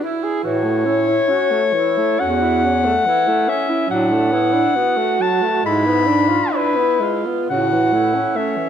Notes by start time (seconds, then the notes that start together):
0.03 E4
0.23 G#4
0.44 A2 E3 F#4 C#5
0.64 A3
0.86 C#4 E4
1.08 E4
1.28 C#4 F#4
1.51 A3
1.73 E3 E4
1.98 A3
2.20 E2 C#4 F#4 F#5
2.43 E4
2.64 C#4
2.85 A3
3.06 E3 E4
3.28 A3
3.48 C#4 E5
3.70 E4
3.89 A2 F#3 D4 F#5
4.12 A3
4.32 B3 E4
4.53 D4
4.76 B3 F#4
4.97 A3
5.20 F#3 A5
5.42 A3
5.63 G#2 G#3 E4 B5
5.86 B3
6.07 D4
6.28 F4
6.52 D4 E4 B4
6.76 B3
7.00 G#3 F4
7.26 B3
7.49 A2 C#3 F#4 F#5
7.72 E3
7.93 A3 E4
8.14 C#4
8.35 A3 C#4 E5
8.57 E3